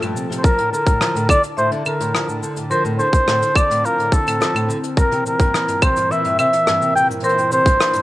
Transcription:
Already playing: analog synth pad A#2 F3 A3 A5, marimba F4
0.02 nylon-string guitar G2, closed hi-hat, cabasa, claves
0.16 nylon-string guitar C3, cabasa
0.30 nylon-string guitar C3, closed hi-hat, cabasa
0.37 flugelhorn C5
0.43 analog synth pad D3, nylon-string guitar F3, marimba A#4, flugelhorn A#4, kick, cabasa
0.58 nylon-string guitar A2, closed hi-hat
0.72 nylon-string guitar D3, flugelhorn A#4, cabasa
0.87 nylon-string guitar A2, kick, closed hi-hat, cabasa
1.01 nylon-string guitar F3, cross-stick, cabasa
1.15 nylon-string guitar A2, closed hi-hat, cabasa
1.29 nylon-string guitar D3, flugelhorn D5, kick, cabasa, claves
1.44 closed hi-hat, cabasa
1.57 nylon-string guitar A2, flugelhorn C5, marimba E5, cabasa
1.71 nylon-string guitar D3, closed hi-hat
1.86 nylon-string guitar D3, flugelhorn A#4, cabasa, claves
2.00 nylon-string guitar A2, closed hi-hat, cabasa
2.15 nylon-string guitar F3, cross-stick, cabasa
2.28 nylon-string guitar A2, cabasa
2.43 nylon-string guitar D3, cabasa
2.57 nylon-string guitar A2, closed hi-hat, cabasa
2.71 nylon-string guitar F3, analog synth pad C4, marimba A#4, flugelhorn C5, cabasa
2.85 nylon-string guitar A2, cabasa
2.99 nylon-string guitar D3, flugelhorn C5, cabasa
3.13 kick, closed hi-hat, cabasa
3.27 nylon-string guitar A2, cross-stick, cabasa
3.41 nylon-string guitar D3, closed hi-hat, cabasa
3.55 nylon-string guitar D3, flugelhorn D5, kick, cabasa, claves
3.70 nylon-string guitar A2, closed hi-hat, cabasa
3.84 nylon-string guitar F3, flugelhorn A#4, marimba F5, cabasa
3.98 nylon-string guitar A2, closed hi-hat
4.12 nylon-string guitar D3, flugelhorn A4, kick, cabasa
4.27 nylon-string guitar A2, closed hi-hat, cabasa, claves
4.40 nylon-string guitar F3, cross-stick, cabasa
4.55 nylon-string guitar A2, closed hi-hat, cabasa, claves
4.69 nylon-string guitar D3, cabasa
4.84 closed hi-hat, cabasa
4.97 nylon-string guitar G2, analog synth pad A#2 E3 A#4, flugelhorn A#4, marimba A#4, kick, cabasa
5.11 nylon-string guitar C3, closed hi-hat
5.26 nylon-string guitar C3, flugelhorn A#4, cabasa
5.40 nylon-string guitar G2, kick, closed hi-hat, cabasa
5.54 nylon-string guitar E3, cross-stick, cabasa
5.68 nylon-string guitar G2, closed hi-hat, cabasa
5.82 nylon-string guitar C3, flugelhorn C5, kick, cabasa, claves
5.96 nylon-string guitar G2, closed hi-hat, cabasa
6.11 nylon-string guitar E3, flugelhorn E5, marimba E5, cabasa
6.25 nylon-string guitar G2, closed hi-hat
6.39 nylon-string guitar C3, flugelhorn E5, cabasa, claves
6.53 closed hi-hat, cabasa
6.67 nylon-string guitar G2, cross-stick, cabasa
6.81 nylon-string guitar C3, cabasa
6.95 nylon-string guitar C3, flugelhorn G5, cabasa
7.09 nylon-string guitar G2, closed hi-hat, cabasa
7.20 nylon-string guitar E3, analog synth pad D4, marimba A#4, flugelhorn C5, closed hi-hat, cabasa
7.29 closed hi-hat
7.37 nylon-string guitar G2, closed hi-hat, cabasa
7.51 nylon-string guitar C3, flugelhorn C5, cabasa
7.66 nylon-string guitar G2, kick, closed hi-hat, cabasa
7.80 nylon-string guitar E3, cross-stick, cabasa
7.93 nylon-string guitar G2, closed hi-hat, cabasa

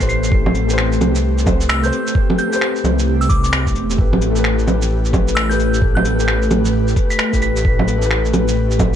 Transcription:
Already playing: ambient pad A3 C4 G4, felt piano C5
0.00 detuned saw bass A1, felt piano A3 G4 B4 C5, kick, shaker
0.09 synth bell C7, cabasa
0.24 shaker
0.30 felt piano A3 G4 B4 C5, kick
0.46 low bongo
0.55 cabasa
0.65 felt piano A3 G4
0.69 felt piano B4, shaker
0.73 felt piano C5
0.78 finger snap
0.92 shaker
1.01 detuned saw bass C2, low bongo, cabasa
1.15 shaker
1.38 shaker
1.44 felt piano A3 G4 B4 C5, kick, low bongo, cabasa
1.61 shaker
1.69 synth bell E6, finger snap
1.82 felt piano A3 G4 B4 C5, synth bell G6, shaker
1.93 cabasa
2.07 shaker
2.13 felt piano A3 G4 B4, kick
2.17 felt piano C5
2.30 low bongo
2.38 synth bell G6, cabasa
2.48 felt piano A3 G4
2.53 felt piano B4 C5, synth bell G6, shaker
2.61 finger snap
2.76 shaker
2.84 detuned saw bass C2, low bongo, cabasa
2.99 shaker
3.21 synth bell E6, shaker
3.29 synth bell D6, kick, cabasa
3.44 synth bell D6, shaker
3.53 finger snap
3.67 kick, shaker
3.75 detuned saw bass E1, cabasa
3.90 shaker
3.96 detuned saw bass A1, felt piano A3 G4, ambient pad B4, kick
4.00 felt piano B4
4.13 low bongo
4.22 cabasa
4.31 felt piano A3
4.35 felt piano G4 B4, shaker
4.44 finger snap
4.59 shaker
4.66 detuned saw bass A1, low bongo, cabasa
4.82 shaker
5.05 shaker
5.11 felt piano A3 G4, kick, low bongo, cabasa
5.15 felt piano B4
5.28 shaker
5.35 synth bell E6, finger snap
5.48 felt piano A3 G4 B4, synth bell G6, shaker
5.58 detuned saw bass A1, cabasa
5.74 shaker
5.80 felt piano A3 G4 B4, kick
5.95 synth bell G6, low bongo
6.05 cabasa
6.15 felt piano A3
6.19 felt piano G4 B4, shaker
6.28 finger snap
6.42 shaker
6.50 detuned saw bass A1, low bongo, cabasa
6.65 shaker
6.73 detuned saw bass A1
6.88 shaker
6.94 felt piano A3 G4 B4, kick, cabasa
7.10 synth bell B6, shaker
7.19 finger snap
7.31 detuned saw bass A1, felt piano A3 G4, kick, shaker
7.35 felt piano B4
7.42 synth bell B6, cabasa
7.56 shaker
7.63 felt piano A3 G4, kick
7.68 felt piano B4
7.79 low bongo
7.88 cabasa
7.98 felt piano A3 G4, shaker
8.06 felt piano B4
8.11 finger snap
8.25 shaker
8.34 detuned saw bass A1, low bongo, cabasa
8.48 shaker
8.71 shaker
8.78 felt piano A3 G4, kick, low bongo, cabasa
8.82 felt piano B4

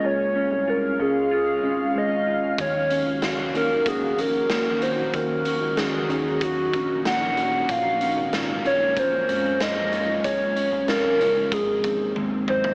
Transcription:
Already playing: clean electric guitar G#3 C#4 F4, ambient pad C#4
0.04 analog synth bass C#2, ambient pad G#3 F5, soft synth lead C#5
0.35 clean electric guitar C#4
0.51 analog synth bass C2
0.68 clean electric guitar F4, soft synth lead A#4
0.99 analog synth bass C#2, clean electric guitar C#4, soft synth lead G#4
1.31 clean electric guitar F4
1.62 analog synth bass G#1, clean electric guitar C#4
1.95 clean electric guitar G#3, soft synth lead D#5
2.27 clean electric guitar F4
2.58 analog synth bass D#2, clean electric guitar D#3, ambient pad D#3 A#3 F#4, soft synth lead C#5, kick, closed hi-hat
2.90 clean electric guitar C#4, closed hi-hat
3.06 analog synth bass C#2
3.22 clean electric guitar F#4, snare, closed hi-hat
3.54 analog synth bass D#2, clean electric guitar C#4, soft synth lead A#4, closed hi-hat
3.86 clean electric guitar F#4, soft synth lead G#4, kick, closed hi-hat
4.18 analog synth bass A#1, clean electric guitar C#4, soft synth lead A#4, closed hi-hat
4.50 clean electric guitar A#3, snare, closed hi-hat
4.82 clean electric guitar F#4, soft synth lead C5, closed hi-hat
5.12 analog synth bass D#2, clean electric guitar D#3, ambient pad D#4, soft synth lead A#4, kick, closed hi-hat
5.45 clean electric guitar C#4, closed hi-hat
5.61 analog synth bass C#2
5.77 clean electric guitar F#4, soft synth lead G#4, snare, closed hi-hat
6.09 analog synth bass D#2, clean electric guitar C#4, closed hi-hat
6.41 clean electric guitar F#4, soft synth lead F#4, kick, closed hi-hat
6.73 analog synth bass A#1, clean electric guitar C#4, kick, closed hi-hat
7.05 clean electric guitar A#3, soft synth lead F#5, snare, closed hi-hat
7.37 clean electric guitar F#4, closed hi-hat
7.67 analog synth bass A#1, clean electric guitar A#2, ambient pad G#3 A#3 C#4, soft synth lead F5, kick, closed hi-hat
8.01 clean electric guitar C#4, closed hi-hat
8.17 analog synth bass G#1
8.33 clean electric guitar F4, snare, closed hi-hat
8.65 analog synth bass A#1, clean electric guitar C#4, soft synth lead C#5, closed hi-hat
8.97 clean electric guitar F4, soft synth lead C5, kick, closed hi-hat
9.29 analog synth bass F2, clean electric guitar C#4, closed hi-hat
9.60 clean electric guitar G#3, soft synth lead D#5, snare, closed hi-hat
9.92 clean electric guitar F4, closed hi-hat
10.23 analog synth bass C#2, ambient pad F3, soft synth lead C#5, kick, closed hi-hat
10.56 clean electric guitar C#4, closed hi-hat
10.72 analog synth bass C2
10.88 clean electric guitar F4, soft synth lead A#4, snare, closed hi-hat
11.20 analog synth bass C#2, clean electric guitar C#4, closed hi-hat
11.51 analog synth bass G#1, clean electric guitar G#2, ambient pad D#3 C4, soft synth lead G#4, kick, closed hi-hat
11.84 analog synth bass D#2, clean electric guitar C4, kick, closed hi-hat
12.15 clean electric guitar G#3, high tom
12.47 clean electric guitar D#4, soft synth lead C5, mid tom
12.64 floor tom

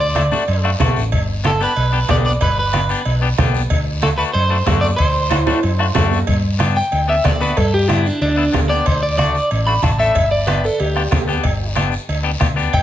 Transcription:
Already playing: fingered electric bass D2
0.00 clean electric guitar D5
0.15 clean electric guitar A3 D4 E4, bombo rim, cowbell, high conga, short guiro
0.32 clean electric guitar A3 D4 F#4, low conga, short guiro
0.48 fingered electric bass F#2, cowbell, high conga, long guiro
0.64 clean electric guitar A3 D4 F#4, bombo rim
0.80 fingered electric bass B1, clean electric guitar A3 D4 F#4, bombo low, bombo rim, cowbell, high conga, low conga, low timbale, short guiro
0.96 fingered electric bass A1, short guiro
1.12 fingered electric bass G1, bombo low, cowbell, high conga, long guiro
1.44 clean electric guitar B3 D4 G4 A4, bombo rim, cowbell, high conga, short guiro
1.60 clean electric guitar B3 D4 G4 B4, short guiro
1.76 fingered electric bass B1, cowbell, high conga, long guiro
1.92 clean electric guitar B3 D4 G4
2.09 fingered electric bass B1, clean electric guitar B3 D4 G4 D5, bombo low, bombo rim, cowbell, high conga, low timbale, short guiro
2.25 clean electric guitar D5, short guiro
2.41 fingered electric bass G1, clean electric guitar B4, bombo low, cowbell, high conga, long guiro
2.59 clean electric guitar B4
2.73 clean electric guitar B3 D4 G4, bombo rim, cowbell, high conga, short guiro
2.89 clean electric guitar B3 D4 G4, short guiro
3.05 fingered electric bass B1, cowbell, high conga, long guiro
3.22 clean electric guitar B3 D4 G4
3.38 fingered electric bass B1, clean electric guitar B3 D4 G4, bombo low, bombo rim, cowbell, high conga, low conga, low timbale, short guiro
3.55 short guiro
3.70 fingered electric bass D2, bombo low, cowbell, high conga, long guiro
4.02 clean electric guitar A3 D4 F#4 A4, bombo rim, cowbell, high conga, short guiro
4.18 clean electric guitar A3 D4 F#4 B4, short guiro
4.33 fingered electric bass F#2, clean electric guitar C5, cowbell, high conga, long guiro
4.50 clean electric guitar A3 D4 F#4
4.66 fingered electric bass F#2, clean electric guitar A3 D4 F#4, bombo low, bombo rim, cowbell, high conga, low timbale, short guiro
4.81 clean electric guitar D5, short guiro
4.96 fingered electric bass D2, clean electric guitar C5, bombo low, cowbell, high conga, long guiro
5.30 clean electric guitar A3 D4 F#4, bombo rim, cowbell, high conga, high timbale, short guiro
5.46 clean electric guitar A3 D4 F#4, low conga, high timbale, short guiro
5.63 fingered electric bass F#2, cowbell, high conga, long guiro
5.79 clean electric guitar A3 D4 F#4, bombo rim
5.95 fingered electric bass F#2, clean electric guitar A3 D4 F#4, bombo low, bombo rim, cowbell, high conga, low conga, low timbale, short guiro
6.11 low timbale, short guiro
6.27 fingered electric bass G2, bombo low, cowbell, high conga, long guiro
6.59 clean electric guitar B3 D4 G4, bombo rim, cowbell, high conga, short guiro
6.76 clean electric guitar G5, short guiro
6.92 fingered electric bass D2, cowbell, high conga, long guiro
7.08 clean electric guitar B3 D4 G4 E5
7.24 fingered electric bass D2, clean electric guitar B3 D4 G4 D5, bombo low, bombo rim, cowbell, high conga, low timbale, short guiro
7.40 clean electric guitar B3 D4 F#4 B4, short guiro
7.57 fingered electric bass G2, clean electric guitar A4, bombo low, cowbell, high conga, long guiro
7.74 clean electric guitar G4
7.88 clean electric guitar B3 D4 E4 G4, bombo rim, cowbell, high conga, short guiro
8.05 clean electric guitar D4, short guiro
8.21 fingered electric bass D2, clean electric guitar D4, cowbell, high conga, long guiro
8.36 clean electric guitar B3 D4 E4
8.52 fingered electric bass D2, clean electric guitar B3 D4 G4, bombo low, bombo rim, cowbell, high conga, low conga, low timbale, short guiro
8.69 clean electric guitar B3 D4 G4 D5, short guiro
8.86 fingered electric bass D2, clean electric guitar C5, bombo low, cowbell, high conga, long guiro
9.03 clean electric guitar D5
9.18 clean electric guitar A3 D4 F#4 D5, bombo rim, cowbell, high conga, short guiro
9.35 short guiro
9.51 fingered electric bass A1, cowbell, high conga, long guiro
9.67 clean electric guitar A3 D4 F#4 B5
9.82 fingered electric bass A1, clean electric guitar A3 D4 F#4 A5, bombo low, bombo rim, cowbell, high conga, short guiro
9.99 clean electric guitar A3 D4 A4 E5, short guiro
10.15 fingered electric bass G1, bombo low, cowbell, high conga, long guiro
10.31 clean electric guitar D5
10.47 clean electric guitar B3 D4 G4 B4, bombo rim, cowbell, high conga, short guiro
10.64 clean electric guitar A4, short guiro
10.79 fingered electric bass D2, clean electric guitar G4, cowbell, high conga, long guiro
10.96 clean electric guitar B3 D4 G4, bombo rim
11.11 fingered electric bass D2, clean electric guitar B3 D4 G4, bombo low, bombo rim, cowbell, high conga, low conga, low timbale, short guiro
11.27 clean electric guitar B3 D4 G4, short guiro
11.44 fingered electric bass G1, bombo low, cowbell, high conga, long guiro
11.75 clean electric guitar B3 D4 G4, bombo rim, cowbell, high conga, short guiro
11.92 short guiro
12.08 fingered electric bass D2, cowbell, high conga, long guiro
12.23 clean electric guitar B3 D4 G4
12.40 fingered electric bass D2, clean electric guitar B3 D4 G4, bombo low, bombo rim, cowbell, high conga, short guiro
12.56 clean electric guitar B3 D4 G4, short guiro
12.73 fingered electric bass G1, clean electric guitar G5, bombo low, cowbell, high conga, long guiro

